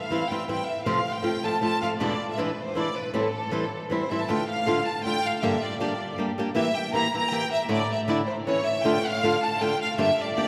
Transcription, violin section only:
0, 0, Header, 1, 2, 480
1, 0, Start_track
1, 0, Key_signature, 0, "minor"
1, 0, Tempo, 379747
1, 1091, Time_signature, 3, 2, 24, 8
1, 5418, Key_signature, -1, "minor"
1, 13245, End_track
2, 0, Start_track
2, 0, Title_t, "Violin section"
2, 0, Program_c, 0, 48
2, 28, Note_on_c, 0, 77, 79
2, 367, Note_off_c, 0, 77, 0
2, 388, Note_on_c, 0, 79, 73
2, 612, Note_off_c, 0, 79, 0
2, 633, Note_on_c, 0, 79, 74
2, 852, Note_on_c, 0, 76, 72
2, 861, Note_off_c, 0, 79, 0
2, 1073, Note_on_c, 0, 77, 75
2, 1083, Note_off_c, 0, 76, 0
2, 1422, Note_off_c, 0, 77, 0
2, 1457, Note_on_c, 0, 79, 84
2, 1822, Note_off_c, 0, 79, 0
2, 1840, Note_on_c, 0, 81, 84
2, 2045, Note_off_c, 0, 81, 0
2, 2060, Note_on_c, 0, 81, 90
2, 2292, Note_off_c, 0, 81, 0
2, 2309, Note_on_c, 0, 77, 80
2, 2409, Note_off_c, 0, 77, 0
2, 2547, Note_on_c, 0, 74, 75
2, 2880, Note_off_c, 0, 74, 0
2, 2924, Note_on_c, 0, 76, 72
2, 3015, Note_off_c, 0, 76, 0
2, 3040, Note_on_c, 0, 71, 68
2, 3279, Note_off_c, 0, 71, 0
2, 3317, Note_on_c, 0, 72, 74
2, 3514, Note_off_c, 0, 72, 0
2, 3530, Note_on_c, 0, 74, 85
2, 3764, Note_off_c, 0, 74, 0
2, 3766, Note_on_c, 0, 71, 76
2, 3979, Note_off_c, 0, 71, 0
2, 4010, Note_on_c, 0, 69, 75
2, 4904, Note_off_c, 0, 69, 0
2, 4965, Note_on_c, 0, 72, 72
2, 5191, Note_off_c, 0, 72, 0
2, 5200, Note_on_c, 0, 76, 74
2, 5357, Note_on_c, 0, 81, 56
2, 5366, Note_off_c, 0, 76, 0
2, 5415, Note_off_c, 0, 81, 0
2, 5416, Note_on_c, 0, 79, 83
2, 5673, Note_off_c, 0, 79, 0
2, 5692, Note_on_c, 0, 77, 87
2, 6131, Note_off_c, 0, 77, 0
2, 6157, Note_on_c, 0, 81, 86
2, 6381, Note_off_c, 0, 81, 0
2, 6388, Note_on_c, 0, 79, 105
2, 6621, Note_off_c, 0, 79, 0
2, 6662, Note_on_c, 0, 77, 86
2, 6868, Note_on_c, 0, 76, 81
2, 6872, Note_off_c, 0, 77, 0
2, 7118, Note_off_c, 0, 76, 0
2, 7141, Note_on_c, 0, 74, 74
2, 7340, Note_off_c, 0, 74, 0
2, 7355, Note_on_c, 0, 74, 62
2, 7790, Note_off_c, 0, 74, 0
2, 8290, Note_on_c, 0, 76, 90
2, 8527, Note_off_c, 0, 76, 0
2, 8553, Note_on_c, 0, 79, 82
2, 8773, Note_off_c, 0, 79, 0
2, 8785, Note_on_c, 0, 82, 96
2, 9014, Note_off_c, 0, 82, 0
2, 9060, Note_on_c, 0, 82, 95
2, 9250, Note_off_c, 0, 82, 0
2, 9272, Note_on_c, 0, 79, 109
2, 9513, Note_off_c, 0, 79, 0
2, 9518, Note_on_c, 0, 76, 82
2, 9718, Note_off_c, 0, 76, 0
2, 9759, Note_on_c, 0, 74, 84
2, 9981, Note_off_c, 0, 74, 0
2, 10027, Note_on_c, 0, 76, 73
2, 10118, Note_off_c, 0, 76, 0
2, 10234, Note_on_c, 0, 74, 76
2, 10343, Note_off_c, 0, 74, 0
2, 10459, Note_on_c, 0, 72, 79
2, 10561, Note_off_c, 0, 72, 0
2, 10703, Note_on_c, 0, 73, 92
2, 10937, Note_off_c, 0, 73, 0
2, 10968, Note_on_c, 0, 76, 87
2, 11185, Note_off_c, 0, 76, 0
2, 11191, Note_on_c, 0, 79, 90
2, 11441, Note_off_c, 0, 79, 0
2, 11456, Note_on_c, 0, 77, 100
2, 11926, Note_off_c, 0, 77, 0
2, 11943, Note_on_c, 0, 81, 90
2, 12153, Note_off_c, 0, 81, 0
2, 12164, Note_on_c, 0, 79, 95
2, 12406, Note_off_c, 0, 79, 0
2, 12416, Note_on_c, 0, 77, 84
2, 12612, Note_off_c, 0, 77, 0
2, 12630, Note_on_c, 0, 76, 91
2, 12859, Note_off_c, 0, 76, 0
2, 12899, Note_on_c, 0, 74, 82
2, 13101, Note_off_c, 0, 74, 0
2, 13116, Note_on_c, 0, 74, 90
2, 13245, Note_off_c, 0, 74, 0
2, 13245, End_track
0, 0, End_of_file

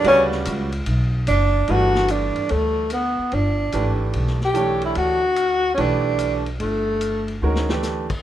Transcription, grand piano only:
0, 0, Header, 1, 2, 480
1, 0, Start_track
1, 0, Tempo, 409836
1, 52, Time_signature, 4, 2, 24, 8
1, 9628, End_track
2, 0, Start_track
2, 0, Title_t, "Grand piano"
2, 0, Program_c, 0, 0
2, 46, Note_on_c, 0, 55, 78
2, 54, Note_on_c, 0, 49, 67
2, 59, Note_on_c, 0, 66, 72
2, 64, Note_on_c, 0, 71, 69
2, 71, Note_on_c, 0, 74, 83
2, 782, Note_off_c, 0, 55, 0
2, 786, Note_off_c, 0, 49, 0
2, 789, Note_off_c, 0, 66, 0
2, 791, Note_off_c, 0, 71, 0
2, 795, Note_off_c, 0, 74, 0
2, 1975, Note_on_c, 0, 52, 66
2, 1978, Note_on_c, 0, 57, 59
2, 1981, Note_on_c, 0, 62, 55
2, 1992, Note_on_c, 0, 55, 50
2, 1995, Note_on_c, 0, 71, 66
2, 3314, Note_off_c, 0, 52, 0
2, 3316, Note_off_c, 0, 57, 0
2, 3317, Note_off_c, 0, 62, 0
2, 3323, Note_off_c, 0, 55, 0
2, 3324, Note_off_c, 0, 71, 0
2, 4369, Note_on_c, 0, 57, 53
2, 4370, Note_on_c, 0, 52, 54
2, 4376, Note_on_c, 0, 62, 48
2, 4379, Note_on_c, 0, 67, 50
2, 4387, Note_on_c, 0, 71, 60
2, 5104, Note_off_c, 0, 57, 0
2, 5105, Note_off_c, 0, 52, 0
2, 5108, Note_off_c, 0, 62, 0
2, 5109, Note_off_c, 0, 67, 0
2, 5113, Note_off_c, 0, 71, 0
2, 5313, Note_on_c, 0, 52, 64
2, 5318, Note_on_c, 0, 57, 56
2, 5323, Note_on_c, 0, 62, 58
2, 5324, Note_on_c, 0, 67, 51
2, 5331, Note_on_c, 0, 73, 64
2, 6057, Note_off_c, 0, 52, 0
2, 6059, Note_off_c, 0, 57, 0
2, 6062, Note_off_c, 0, 62, 0
2, 6063, Note_off_c, 0, 67, 0
2, 6066, Note_off_c, 0, 73, 0
2, 6761, Note_on_c, 0, 52, 66
2, 6764, Note_on_c, 0, 57, 63
2, 6770, Note_on_c, 0, 62, 56
2, 6777, Note_on_c, 0, 67, 57
2, 6777, Note_on_c, 0, 71, 75
2, 7502, Note_off_c, 0, 52, 0
2, 7503, Note_off_c, 0, 57, 0
2, 7506, Note_off_c, 0, 62, 0
2, 7510, Note_off_c, 0, 67, 0
2, 7510, Note_off_c, 0, 71, 0
2, 8690, Note_on_c, 0, 51, 59
2, 8703, Note_on_c, 0, 56, 59
2, 8704, Note_on_c, 0, 66, 58
2, 8706, Note_on_c, 0, 61, 54
2, 8712, Note_on_c, 0, 70, 66
2, 8979, Note_off_c, 0, 51, 0
2, 8985, Note_off_c, 0, 56, 0
2, 8986, Note_off_c, 0, 66, 0
2, 8987, Note_off_c, 0, 61, 0
2, 8990, Note_off_c, 0, 70, 0
2, 9003, Note_on_c, 0, 57, 55
2, 9004, Note_on_c, 0, 52, 57
2, 9009, Note_on_c, 0, 62, 51
2, 9021, Note_on_c, 0, 67, 52
2, 9024, Note_on_c, 0, 71, 62
2, 9424, Note_off_c, 0, 57, 0
2, 9425, Note_off_c, 0, 52, 0
2, 9427, Note_off_c, 0, 62, 0
2, 9433, Note_off_c, 0, 67, 0
2, 9434, Note_off_c, 0, 71, 0
2, 9628, End_track
0, 0, End_of_file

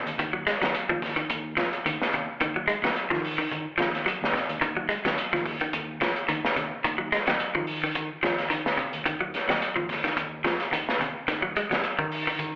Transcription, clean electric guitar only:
0, 0, Header, 1, 2, 480
1, 0, Start_track
1, 0, Tempo, 554529
1, 165, Time_signature, 4, 2, 24, 8
1, 10868, End_track
2, 0, Start_track
2, 0, Title_t, "Clean electric guitar"
2, 0, Program_c, 0, 27
2, 169, Note_on_c, 0, 51, 78
2, 236, Note_off_c, 0, 51, 0
2, 288, Note_on_c, 0, 54, 63
2, 347, Note_off_c, 0, 54, 0
2, 404, Note_on_c, 0, 56, 72
2, 473, Note_off_c, 0, 56, 0
2, 533, Note_on_c, 0, 54, 70
2, 660, Note_off_c, 0, 54, 0
2, 774, Note_on_c, 0, 53, 72
2, 900, Note_off_c, 0, 53, 0
2, 1006, Note_on_c, 0, 51, 71
2, 1135, Note_off_c, 0, 51, 0
2, 1358, Note_on_c, 0, 53, 73
2, 1486, Note_off_c, 0, 53, 0
2, 1609, Note_on_c, 0, 51, 76
2, 1735, Note_off_c, 0, 51, 0
2, 1853, Note_on_c, 0, 48, 70
2, 1978, Note_off_c, 0, 48, 0
2, 2089, Note_on_c, 0, 51, 85
2, 2157, Note_off_c, 0, 51, 0
2, 2217, Note_on_c, 0, 54, 61
2, 2275, Note_off_c, 0, 54, 0
2, 2316, Note_on_c, 0, 56, 75
2, 2387, Note_off_c, 0, 56, 0
2, 2457, Note_on_c, 0, 54, 67
2, 2583, Note_off_c, 0, 54, 0
2, 2687, Note_on_c, 0, 53, 72
2, 2816, Note_off_c, 0, 53, 0
2, 2928, Note_on_c, 0, 51, 69
2, 3056, Note_off_c, 0, 51, 0
2, 3269, Note_on_c, 0, 53, 72
2, 3400, Note_off_c, 0, 53, 0
2, 3514, Note_on_c, 0, 54, 80
2, 3644, Note_off_c, 0, 54, 0
2, 3752, Note_on_c, 0, 48, 74
2, 3882, Note_off_c, 0, 48, 0
2, 3993, Note_on_c, 0, 51, 82
2, 4065, Note_off_c, 0, 51, 0
2, 4126, Note_on_c, 0, 54, 62
2, 4187, Note_off_c, 0, 54, 0
2, 4231, Note_on_c, 0, 56, 69
2, 4304, Note_off_c, 0, 56, 0
2, 4371, Note_on_c, 0, 54, 66
2, 4499, Note_off_c, 0, 54, 0
2, 4613, Note_on_c, 0, 53, 70
2, 4740, Note_off_c, 0, 53, 0
2, 4858, Note_on_c, 0, 51, 66
2, 4983, Note_off_c, 0, 51, 0
2, 5207, Note_on_c, 0, 53, 70
2, 5333, Note_off_c, 0, 53, 0
2, 5441, Note_on_c, 0, 51, 74
2, 5568, Note_off_c, 0, 51, 0
2, 5682, Note_on_c, 0, 48, 73
2, 5809, Note_off_c, 0, 48, 0
2, 5924, Note_on_c, 0, 51, 84
2, 5993, Note_off_c, 0, 51, 0
2, 6044, Note_on_c, 0, 54, 62
2, 6105, Note_off_c, 0, 54, 0
2, 6166, Note_on_c, 0, 56, 70
2, 6234, Note_off_c, 0, 56, 0
2, 6298, Note_on_c, 0, 54, 62
2, 6424, Note_off_c, 0, 54, 0
2, 6536, Note_on_c, 0, 53, 69
2, 6662, Note_off_c, 0, 53, 0
2, 6783, Note_on_c, 0, 51, 67
2, 6907, Note_off_c, 0, 51, 0
2, 7123, Note_on_c, 0, 53, 72
2, 7249, Note_off_c, 0, 53, 0
2, 7358, Note_on_c, 0, 51, 79
2, 7486, Note_off_c, 0, 51, 0
2, 7595, Note_on_c, 0, 48, 74
2, 7724, Note_off_c, 0, 48, 0
2, 7838, Note_on_c, 0, 51, 77
2, 7908, Note_off_c, 0, 51, 0
2, 7969, Note_on_c, 0, 54, 63
2, 8028, Note_off_c, 0, 54, 0
2, 8214, Note_on_c, 0, 54, 67
2, 8340, Note_off_c, 0, 54, 0
2, 8446, Note_on_c, 0, 53, 68
2, 8574, Note_off_c, 0, 53, 0
2, 8691, Note_on_c, 0, 51, 71
2, 8818, Note_off_c, 0, 51, 0
2, 9041, Note_on_c, 0, 53, 71
2, 9167, Note_off_c, 0, 53, 0
2, 9286, Note_on_c, 0, 51, 76
2, 9411, Note_off_c, 0, 51, 0
2, 9528, Note_on_c, 0, 48, 75
2, 9653, Note_off_c, 0, 48, 0
2, 9764, Note_on_c, 0, 51, 82
2, 9832, Note_off_c, 0, 51, 0
2, 9889, Note_on_c, 0, 54, 67
2, 9948, Note_off_c, 0, 54, 0
2, 10012, Note_on_c, 0, 56, 70
2, 10078, Note_off_c, 0, 56, 0
2, 10137, Note_on_c, 0, 54, 65
2, 10262, Note_off_c, 0, 54, 0
2, 10375, Note_on_c, 0, 51, 69
2, 10501, Note_off_c, 0, 51, 0
2, 10624, Note_on_c, 0, 51, 74
2, 10747, Note_off_c, 0, 51, 0
2, 10868, End_track
0, 0, End_of_file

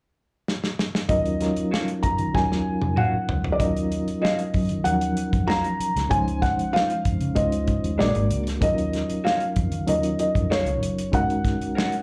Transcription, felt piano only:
0, 0, Header, 1, 2, 480
1, 0, Start_track
1, 0, Tempo, 626959
1, 837, Time_signature, 4, 2, 24, 8
1, 9207, End_track
2, 0, Start_track
2, 0, Title_t, "Felt piano"
2, 0, Program_c, 0, 0
2, 832, Note_on_c, 0, 75, 90
2, 1284, Note_off_c, 0, 75, 0
2, 1552, Note_on_c, 0, 82, 80
2, 1797, Note_on_c, 0, 80, 88
2, 1801, Note_off_c, 0, 82, 0
2, 2278, Note_on_c, 0, 78, 69
2, 2291, Note_off_c, 0, 80, 0
2, 2612, Note_off_c, 0, 78, 0
2, 2698, Note_on_c, 0, 74, 66
2, 2752, Note_on_c, 0, 75, 82
2, 2754, Note_off_c, 0, 74, 0
2, 3216, Note_off_c, 0, 75, 0
2, 3227, Note_on_c, 0, 75, 81
2, 3681, Note_off_c, 0, 75, 0
2, 3707, Note_on_c, 0, 78, 79
2, 4192, Note_on_c, 0, 82, 96
2, 4206, Note_off_c, 0, 78, 0
2, 4675, Note_on_c, 0, 80, 100
2, 4688, Note_off_c, 0, 82, 0
2, 4914, Note_on_c, 0, 78, 79
2, 4922, Note_off_c, 0, 80, 0
2, 5138, Note_off_c, 0, 78, 0
2, 5153, Note_on_c, 0, 77, 93
2, 5631, Note_on_c, 0, 75, 85
2, 5649, Note_off_c, 0, 77, 0
2, 6117, Note_on_c, 0, 74, 78
2, 6128, Note_off_c, 0, 75, 0
2, 6452, Note_off_c, 0, 74, 0
2, 6604, Note_on_c, 0, 75, 94
2, 7079, Note_on_c, 0, 77, 78
2, 7095, Note_off_c, 0, 75, 0
2, 7565, Note_on_c, 0, 75, 73
2, 7573, Note_off_c, 0, 77, 0
2, 7793, Note_off_c, 0, 75, 0
2, 7805, Note_on_c, 0, 75, 70
2, 8025, Note_off_c, 0, 75, 0
2, 8048, Note_on_c, 0, 73, 77
2, 8531, Note_on_c, 0, 78, 78
2, 8538, Note_off_c, 0, 73, 0
2, 9207, Note_off_c, 0, 78, 0
2, 9207, End_track
0, 0, End_of_file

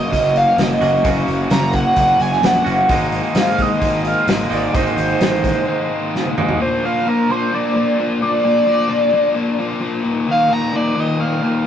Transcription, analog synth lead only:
0, 0, Header, 1, 2, 480
1, 0, Start_track
1, 0, Tempo, 461894
1, 1096, Time_signature, 4, 2, 24, 8
1, 12125, End_track
2, 0, Start_track
2, 0, Title_t, "Analog synth lead"
2, 0, Program_c, 0, 81
2, 0, Note_on_c, 0, 75, 108
2, 389, Note_on_c, 0, 77, 96
2, 404, Note_off_c, 0, 75, 0
2, 648, Note_on_c, 0, 75, 78
2, 663, Note_off_c, 0, 77, 0
2, 1112, Note_off_c, 0, 75, 0
2, 1568, Note_on_c, 0, 82, 101
2, 1818, Note_on_c, 0, 78, 105
2, 1834, Note_off_c, 0, 82, 0
2, 2303, Note_on_c, 0, 80, 93
2, 2319, Note_off_c, 0, 78, 0
2, 2554, Note_on_c, 0, 78, 76
2, 2569, Note_off_c, 0, 80, 0
2, 3026, Note_off_c, 0, 78, 0
2, 3530, Note_on_c, 0, 77, 103
2, 3763, Note_on_c, 0, 75, 114
2, 3779, Note_off_c, 0, 77, 0
2, 4233, Note_on_c, 0, 77, 97
2, 4249, Note_off_c, 0, 75, 0
2, 4482, Note_on_c, 0, 75, 90
2, 4498, Note_off_c, 0, 77, 0
2, 4706, Note_off_c, 0, 75, 0
2, 4712, Note_on_c, 0, 74, 84
2, 4929, Note_off_c, 0, 74, 0
2, 4940, Note_on_c, 0, 72, 92
2, 6579, Note_off_c, 0, 72, 0
2, 6873, Note_on_c, 0, 72, 102
2, 7090, Note_off_c, 0, 72, 0
2, 7123, Note_on_c, 0, 77, 110
2, 7361, Note_on_c, 0, 70, 94
2, 7376, Note_off_c, 0, 77, 0
2, 7599, Note_on_c, 0, 72, 102
2, 7615, Note_off_c, 0, 70, 0
2, 7839, Note_on_c, 0, 74, 87
2, 7854, Note_off_c, 0, 72, 0
2, 8309, Note_off_c, 0, 74, 0
2, 8542, Note_on_c, 0, 74, 125
2, 9939, Note_off_c, 0, 74, 0
2, 10716, Note_on_c, 0, 77, 106
2, 10942, Note_on_c, 0, 82, 108
2, 10958, Note_off_c, 0, 77, 0
2, 11181, Note_on_c, 0, 74, 96
2, 11197, Note_off_c, 0, 82, 0
2, 11431, Note_on_c, 0, 75, 103
2, 11446, Note_off_c, 0, 74, 0
2, 11644, Note_on_c, 0, 77, 86
2, 11660, Note_off_c, 0, 75, 0
2, 12125, Note_off_c, 0, 77, 0
2, 12125, End_track
0, 0, End_of_file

